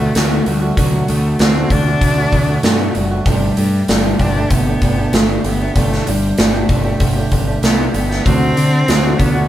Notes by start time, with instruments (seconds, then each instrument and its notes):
Already playing: steel-string acoustic guitar D3, cello A3
0.00 steel-string acoustic guitar A3 C4 F#4
0.14 picked electric bass D2, steel-string acoustic guitar D3 A3 C4 F#4, snare, open hi-hat
0.46 picked electric bass D2, steel-string acoustic guitar D3 A3 C4 F#4, cello G3, open hi-hat
0.61 steel-string acoustic guitar A3 C4 F#4
0.77 picked electric bass D2, steel-string acoustic guitar D3 A3 C4 F#4, cello F#3, kick, open hi-hat
1.08 picked electric bass D2, steel-string acoustic guitar D3 A3 C4 F#4, cello A3, open hi-hat
1.39 picked electric bass D2, steel-string acoustic guitar D3 A3 C4 F#4, cello C4, snare, open hi-hat
1.55 steel-string acoustic guitar A3 C4 F#4
1.70 picked electric bass D2, steel-string acoustic guitar D3 A3 C4 F#4, cello D4, kick, open hi-hat
1.86 steel-string acoustic guitar A3 C4 F#4
2.01 picked electric bass D2, kick, open hi-hat
2.17 steel-string acoustic guitar A3 C4 F#4
2.32 picked electric bass D2, steel-string acoustic guitar D3 A3 C4 F#4, kick, open hi-hat
2.48 steel-string acoustic guitar A3 C4 F#4
2.63 picked electric bass G2, steel-string acoustic guitar D3 A3 C4 F#4, cello A3, snare, open hi-hat
2.95 picked electric bass F#1, steel-string acoustic guitar D3 A3 C4 F#4, cello G3, open hi-hat
3.11 steel-string acoustic guitar A3 C4 F#4
3.26 picked electric bass G1, cello G3, steel-string acoustic guitar G3 A3 D4 G4, kick, open hi-hat
3.57 picked electric bass G2, steel-string acoustic guitar G3 A3 D4 G4, open hi-hat
3.88 picked electric bass G1, steel-string acoustic guitar G3 A3 D4 G4, snare, open hi-hat
4.04 steel-string acoustic guitar A3 D4 G4
4.19 picked electric bass G1, steel-string acoustic guitar G3 A3 D4 G4, cello D4, kick, open hi-hat
4.36 steel-string acoustic guitar A3 D4 G4
4.50 picked electric bass G1, cello B3, kick, open hi-hat
4.67 steel-string acoustic guitar A3 D4 G4
4.82 picked electric bass G1, steel-string acoustic guitar G3 A3 D4 G4, kick, open hi-hat
4.98 steel-string acoustic guitar A3 D4 G4
5.12 picked electric bass G1, steel-string acoustic guitar G3 A3 D4 G4, cello A3, snare, open hi-hat
5.44 picked electric bass G1, steel-string acoustic guitar G3 A3 D4 G4, cello B3, open hi-hat
5.60 steel-string acoustic guitar A3 D4 G4
5.76 picked electric bass G1, steel-string acoustic guitar G3 A3 D4 G4, cello A3, kick, open hi-hat
5.92 snare
6.07 picked electric bass G1, steel-string acoustic guitar G3 A3 D4 G4, cello G3, open hi-hat
6.38 picked electric bass G1, steel-string acoustic guitar G3 A3 D4 G4, cello A3, snare, open hi-hat
6.54 steel-string acoustic guitar A3 D4 G4
6.69 picked electric bass G1, steel-string acoustic guitar G3 A3 D4 G4, kick, open hi-hat
6.84 steel-string acoustic guitar A3 D4 G4
7.00 picked electric bass G1, kick, open hi-hat
7.16 steel-string acoustic guitar A3 D4 G4
7.32 picked electric bass G1, steel-string acoustic guitar G3 A3 D4 G4, kick, open hi-hat
7.47 steel-string acoustic guitar A3 D4 G4
7.62 picked electric bass C2, steel-string acoustic guitar G3 A3 D4 G4, cello B3, snare, open hi-hat
7.92 picked electric bass G1, steel-string acoustic guitar G3 A3 D4 G4, cello B3, open hi-hat
8.09 steel-string acoustic guitar A3 D4 G4, snare
8.25 picked electric bass D2, steel-string acoustic guitar D3 F#3 A3 D4 F#4, cello C4, kick, open hi-hat
8.56 picked electric bass D3, steel-string acoustic guitar F#3 A3 D4 F#4, open hi-hat
8.88 picked electric bass D2, steel-string acoustic guitar D3 F#3 A3 D4 F#4, snare, open hi-hat
9.04 steel-string acoustic guitar A3 D4 F#4
9.18 picked electric bass D2, steel-string acoustic guitar F#3 A3 D4 F#4, cello B3, kick, open hi-hat
9.34 steel-string acoustic guitar A3 D4 F#4